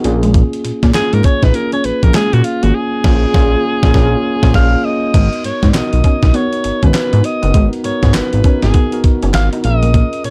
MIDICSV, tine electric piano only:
0, 0, Header, 1, 2, 480
1, 0, Start_track
1, 0, Tempo, 600000
1, 273, Time_signature, 4, 2, 24, 8
1, 8241, End_track
2, 0, Start_track
2, 0, Title_t, "Tine electric piano"
2, 0, Program_c, 0, 4
2, 0, Control_c, 0, 64, 127
2, 31, Note_on_c, 0, 58, 85
2, 36, Note_on_c, 0, 61, 87
2, 38, Note_on_c, 0, 65, 84
2, 41, Note_on_c, 0, 68, 102
2, 42, Control_c, 0, 64, 0
2, 161, Control_c, 0, 64, 127
2, 631, Note_off_c, 0, 58, 0
2, 633, Note_off_c, 0, 61, 0
2, 635, Note_off_c, 0, 65, 0
2, 636, Note_off_c, 0, 68, 0
2, 752, Note_on_c, 0, 58, 87
2, 754, Note_on_c, 0, 61, 81
2, 758, Note_on_c, 0, 65, 77
2, 761, Note_on_c, 0, 68, 96
2, 1108, Note_off_c, 0, 58, 0
2, 1109, Note_off_c, 0, 61, 0
2, 1111, Note_off_c, 0, 65, 0
2, 1113, Note_off_c, 0, 68, 0
2, 1231, Note_on_c, 0, 58, 73
2, 1235, Note_on_c, 0, 61, 67
2, 1238, Note_on_c, 0, 65, 63
2, 1240, Note_on_c, 0, 68, 80
2, 1484, Note_off_c, 0, 58, 0
2, 1486, Note_off_c, 0, 61, 0
2, 1488, Note_off_c, 0, 65, 0
2, 1489, Note_off_c, 0, 68, 0
2, 1620, Note_on_c, 0, 58, 80
2, 1623, Note_on_c, 0, 61, 71
2, 1625, Note_on_c, 0, 65, 67
2, 1630, Note_on_c, 0, 68, 81
2, 1932, Note_off_c, 0, 58, 0
2, 1934, Note_off_c, 0, 61, 0
2, 1935, Note_off_c, 0, 65, 0
2, 1937, Note_off_c, 0, 68, 0
2, 2099, Note_on_c, 0, 58, 80
2, 2103, Note_on_c, 0, 61, 77
2, 2105, Note_on_c, 0, 65, 78
2, 2109, Note_on_c, 0, 68, 90
2, 2192, Note_off_c, 0, 58, 0
2, 2194, Note_off_c, 0, 61, 0
2, 2195, Note_off_c, 0, 65, 0
2, 2197, Note_off_c, 0, 68, 0
2, 2432, Note_on_c, 0, 58, 100
2, 2436, Note_on_c, 0, 61, 96
2, 2438, Note_on_c, 0, 65, 101
2, 2442, Note_on_c, 0, 68, 107
2, 2605, Note_off_c, 0, 58, 0
2, 2608, Note_off_c, 0, 61, 0
2, 2609, Note_off_c, 0, 65, 0
2, 2611, Note_off_c, 0, 68, 0
2, 2672, Note_on_c, 0, 58, 108
2, 2674, Note_on_c, 0, 61, 98
2, 2677, Note_on_c, 0, 65, 105
2, 2680, Note_on_c, 0, 68, 109
2, 2845, Note_off_c, 0, 58, 0
2, 2847, Note_off_c, 0, 61, 0
2, 2849, Note_off_c, 0, 65, 0
2, 2850, Note_off_c, 0, 68, 0
2, 3061, Note_on_c, 0, 58, 105
2, 3064, Note_on_c, 0, 61, 99
2, 3068, Note_on_c, 0, 65, 100
2, 3070, Note_on_c, 0, 68, 96
2, 3139, Note_off_c, 0, 58, 0
2, 3141, Note_off_c, 0, 61, 0
2, 3143, Note_off_c, 0, 65, 0
2, 3144, Note_off_c, 0, 68, 0
2, 3152, Note_on_c, 0, 58, 98
2, 3156, Note_on_c, 0, 61, 106
2, 3159, Note_on_c, 0, 65, 104
2, 3163, Note_on_c, 0, 68, 94
2, 3326, Note_off_c, 0, 58, 0
2, 3328, Note_off_c, 0, 61, 0
2, 3329, Note_off_c, 0, 65, 0
2, 3332, Note_off_c, 0, 68, 0
2, 3540, Note_on_c, 0, 58, 94
2, 3543, Note_on_c, 0, 61, 99
2, 3546, Note_on_c, 0, 65, 101
2, 3550, Note_on_c, 0, 68, 101
2, 3619, Note_off_c, 0, 58, 0
2, 3620, Note_off_c, 0, 61, 0
2, 3622, Note_off_c, 0, 65, 0
2, 3624, Note_off_c, 0, 68, 0
2, 3630, Note_on_c, 0, 58, 94
2, 3633, Note_on_c, 0, 61, 94
2, 3636, Note_on_c, 0, 65, 92
2, 3639, Note_on_c, 0, 68, 98
2, 3804, Note_off_c, 0, 58, 0
2, 3806, Note_off_c, 0, 61, 0
2, 3808, Note_off_c, 0, 65, 0
2, 3809, Note_off_c, 0, 68, 0
2, 4109, Note_on_c, 0, 59, 73
2, 4115, Note_on_c, 0, 66, 66
2, 4119, Note_on_c, 0, 70, 76
2, 4123, Control_c, 0, 64, 0
2, 4259, Control_c, 0, 64, 127
2, 4467, Note_off_c, 0, 59, 0
2, 4470, Note_off_c, 0, 66, 0
2, 4472, Note_off_c, 0, 70, 0
2, 4589, Note_on_c, 0, 59, 83
2, 4592, Note_on_c, 0, 63, 79
2, 4596, Note_on_c, 0, 66, 82
2, 4599, Note_on_c, 0, 70, 96
2, 4947, Note_off_c, 0, 59, 0
2, 4948, Note_off_c, 0, 63, 0
2, 4950, Note_off_c, 0, 66, 0
2, 4952, Note_off_c, 0, 70, 0
2, 5069, Note_on_c, 0, 59, 70
2, 5073, Note_on_c, 0, 63, 68
2, 5076, Note_on_c, 0, 66, 68
2, 5079, Note_on_c, 0, 70, 79
2, 5323, Note_off_c, 0, 59, 0
2, 5325, Note_off_c, 0, 63, 0
2, 5327, Note_off_c, 0, 66, 0
2, 5328, Note_off_c, 0, 70, 0
2, 5457, Note_on_c, 0, 59, 71
2, 5461, Note_on_c, 0, 63, 63
2, 5464, Note_on_c, 0, 66, 61
2, 5467, Note_on_c, 0, 71, 75
2, 5770, Note_off_c, 0, 59, 0
2, 5772, Note_off_c, 0, 63, 0
2, 5774, Note_off_c, 0, 66, 0
2, 5775, Note_off_c, 0, 71, 0
2, 5937, Note_on_c, 0, 59, 77
2, 5939, Note_on_c, 0, 63, 69
2, 5943, Note_on_c, 0, 66, 70
2, 5947, Note_on_c, 0, 70, 88
2, 6187, Note_off_c, 0, 59, 0
2, 6188, Note_off_c, 0, 63, 0
2, 6190, Note_off_c, 0, 66, 0
2, 6192, Note_off_c, 0, 70, 0
2, 6268, Note_on_c, 0, 59, 80
2, 6272, Note_on_c, 0, 63, 66
2, 6274, Note_on_c, 0, 66, 73
2, 6278, Note_on_c, 0, 70, 82
2, 6626, Note_off_c, 0, 59, 0
2, 6628, Note_off_c, 0, 63, 0
2, 6629, Note_off_c, 0, 66, 0
2, 6631, Note_off_c, 0, 70, 0
2, 6750, Note_on_c, 0, 59, 76
2, 6753, Note_on_c, 0, 63, 72
2, 6756, Note_on_c, 0, 66, 70
2, 6759, Note_on_c, 0, 70, 89
2, 7004, Note_off_c, 0, 59, 0
2, 7005, Note_off_c, 0, 63, 0
2, 7007, Note_off_c, 0, 66, 0
2, 7008, Note_off_c, 0, 70, 0
2, 7138, Note_on_c, 0, 59, 88
2, 7141, Note_on_c, 0, 63, 80
2, 7145, Note_on_c, 0, 66, 79
2, 7148, Note_on_c, 0, 70, 97
2, 7451, Note_off_c, 0, 59, 0
2, 7452, Note_off_c, 0, 63, 0
2, 7454, Note_off_c, 0, 66, 0
2, 7456, Note_off_c, 0, 70, 0
2, 7619, Note_on_c, 0, 59, 70
2, 7623, Note_on_c, 0, 63, 68
2, 7625, Note_on_c, 0, 66, 68
2, 7629, Note_on_c, 0, 70, 85
2, 7709, Note_off_c, 0, 70, 0
2, 7711, Note_on_c, 0, 60, 60
2, 7712, Note_off_c, 0, 59, 0
2, 7713, Note_on_c, 0, 65, 69
2, 7714, Note_off_c, 0, 63, 0
2, 7715, Note_off_c, 0, 66, 0
2, 7717, Note_on_c, 0, 68, 66
2, 7719, Note_on_c, 0, 70, 85
2, 7723, Control_c, 0, 64, 0
2, 7762, Note_on_c, 0, 61, 75
2, 7776, Note_off_c, 0, 60, 0
2, 7849, Control_c, 0, 64, 127
2, 8241, Note_off_c, 0, 61, 0
2, 8241, Note_off_c, 0, 65, 0
2, 8241, Note_off_c, 0, 68, 0
2, 8241, Note_off_c, 0, 70, 0
2, 8241, End_track
0, 0, End_of_file